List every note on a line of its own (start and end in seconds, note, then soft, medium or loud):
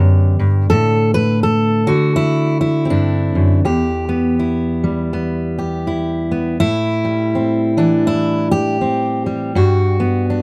0.00 0.39 F#2 medium
0.00 1.86 D3 medium
0.00 0.67 B3 medium
0.00 0.67 D4 medium
0.00 0.69 G4 medium
0.39 0.69 G2 medium
0.70 1.88 A2 medium
0.70 1.14 A4 loud
1.14 1.43 B4 loud
1.43 2.16 A4 medium
1.87 3.65 D3 medium
1.87 2.90 F#4 loud
2.16 2.60 E4 loud
2.61 3.59 E4 medium
2.85 3.65 C4 medium
2.90 3.35 G2 medium
2.90 3.65 D4 medium
3.35 3.64 F#2 medium
3.65 6.60 E2 medium
3.65 5.58 G4 medium
4.09 5.12 B3 medium
4.39 5.86 E4 medium
4.84 6.63 G3 medium
5.13 6.30 B3 medium
5.58 6.60 G4 medium
5.87 6.57 E4 medium
6.31 6.57 B3 medium
6.60 9.55 A2 medium
6.60 8.06 E4 loud
7.05 9.26 G3 soft
7.35 7.77 C4 soft
7.77 9.51 E3 medium
7.77 8.81 D4 medium
8.07 8.51 E4 medium
8.51 9.55 G4 loud
8.81 9.51 C4 medium
9.26 9.99 G3 medium
9.55 10.42 G2 medium
9.55 10.42 F#4 medium
10.00 10.42 B3 medium
10.30 10.42 D4 medium